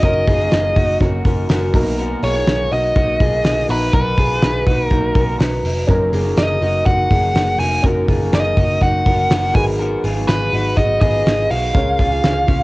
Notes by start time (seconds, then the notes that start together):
Already playing: C#4 D#4 F#4 A#4
0.02 F#1 F#2 C#3 F#3 A#3 C#4 D#4 F#4 A#4 D#5, kick, hi-hat pedal, open hi-hat
0.27 F#1 F4 G#4, kick, hi-hat pedal, open hi-hat
0.39 F#3 A#3 D#4 F#4
0.51 F#1 G#4, snare, hi-hat pedal, open hi-hat
0.76 F#1 F#3 A#3 D#4 F#4, kick, hi-hat pedal, open hi-hat
1.00 F#1 F#3 A#3 C#4 D#4 F#4 A#4, kick, hi-hat pedal, open hi-hat
1.24 F#1 F#3 A#3 D#4 F#4 A#4, kick, hi-hat pedal, open hi-hat
1.49 F#1 F#3 A#3 D#4 F#4 A#4, snare, hi-hat pedal, open hi-hat
1.73 B1 B2 F#3 A#3 B3 D#4 F#4 A#4, kick, hi-hat pedal, open hi-hat
1.98 F#4 A#4, hi-hat pedal, open hi-hat
2.23 B1 F4 G#4 C#5, hi-hat pedal, open hi-hat
2.35 A#3 D#4 F#4
2.47 B1, snare, hi-hat pedal, open hi-hat
2.71 B1 F#3 A#3 D#4 F#4 D#5, hi-hat pedal, open hi-hat
2.95 B1 F#3 A#3 D#4 F#4, kick, hi-hat pedal, open hi-hat
3.19 B1 F#3 A#3 D#4 F4 F#4 G#4, kick, hi-hat pedal, open hi-hat
3.44 B1 F#3 A#3 D#4 F#4, snare, hi-hat pedal, open hi-hat
3.68 A#1 B3 D#4 F#4 B4 A#5, hi-hat pedal, open hi-hat
3.93 B1 B2 F#3 D#4 F#4 A#4 B4, kick, hi-hat pedal, open hi-hat
4.17 B1 F4 G#4, kick, hi-hat pedal, open hi-hat
4.29 D#4 F#4
4.42 B1, snare, hi-hat pedal, open hi-hat
4.66 B1 F#3 A#3 D#4 F#4, kick, hi-hat pedal, open hi-hat
4.87 F#4 A#4
4.91 B1 F#3 A#3 D#4 F#4, kick, hi-hat pedal, open hi-hat
5.15 B1 F#3 A#3 D#4 F#4 A#4, kick, hi-hat pedal, open hi-hat
5.39 B1 F#3 D#4 F#4 B4 A#5, snare, hi-hat pedal, open hi-hat
5.64 F1, hi-hat pedal, open hi-hat
5.87 F#1 F#2 C#3 F#3 A#3 C#4 D#4 F#4 A#4, kick
6.13 F#1 F4 G#4, hi-hat pedal, open hi-hat
6.25 F#3 A#3 D#4 F#4
6.37 F#1 D#5, snare, hi-hat pedal, open hi-hat
6.61 F#1 F#3 A#3 D#4 F#4, hi-hat pedal, open hi-hat
6.85 F#1 F#3 A#3 D#4 F#4 F#5, kick, hi-hat pedal, open hi-hat
7.10 F#1 F3 F#3 A#3 D#4 F#4 G#4, kick, hi-hat pedal, open hi-hat
7.34 F#1 F#3 A#3 D#4 F#4, snare, hi-hat pedal, open hi-hat
7.59 F1 D#4 F#4 G#5, hi-hat pedal, open hi-hat
7.82 F#1 F#2 C#3 F#3 A#3 C#4 D#4 F#4 A#4, kick, hi-hat pedal, open hi-hat
8.08 F#1 F4 G#4, kick, hi-hat pedal, open hi-hat
8.20 F#3 A#3 D#4 F#4
8.32 F#1 D#5, snare, hi-hat pedal, open hi-hat
8.57 F#1 F#3 A#3 D#4 F#4, kick, hi-hat pedal, open hi-hat
8.81 F#1 F#3 A#3 D#4 F#4 F#5, kick, hi-hat pedal, open hi-hat
9.05 F#1 F#3 A#3 D#4 F#4 A#4, kick, hi-hat pedal, open hi-hat
9.30 F#1 F#3 A#3 D#4 F#4 A#4, snare, hi-hat pedal, open hi-hat
9.54 G#1 G#2 D#3 F#3 B3 D#4 F#4 G#4 B4 G#5, kick, hi-hat pedal, open hi-hat
9.79 F#4 A#4, hi-hat pedal, open hi-hat
10.04 G#1 F4 G#4, hi-hat pedal, open hi-hat
10.16 F#3 B3 D#4 G#4
10.28 G#1 B4, snare, hi-hat pedal, open hi-hat
10.52 G#1 F#3 B3 D#4 F#4 G#4, hi-hat pedal, open hi-hat
10.76 G#1 F#3 B3 D#4 F#4 G#4 D#5, kick, hi-hat pedal, open hi-hat
11.01 G#1 F#3 B3 D#4 F4 F#4 G#4 B4 D#5, kick, hi-hat pedal, open hi-hat
11.25 G#1 F#3 B3 D#4 G#4, snare, hi-hat pedal, open hi-hat
11.50 B1 D#4 F#4 F5, hi-hat pedal, open hi-hat
11.74 C#2 C#3 G#3 C#4 F4 G#4 A#4 C#5, kick, hi-hat pedal, open hi-hat
11.99 C#2 F4 G#4, kick, hi-hat pedal, open hi-hat
12.11 C#4 F4 G#4
12.23 C#2 F4, snare, hi-hat pedal, open hi-hat
12.47 C#2 G#3 C#4 F4 G#4, kick, hi-hat pedal, open hi-hat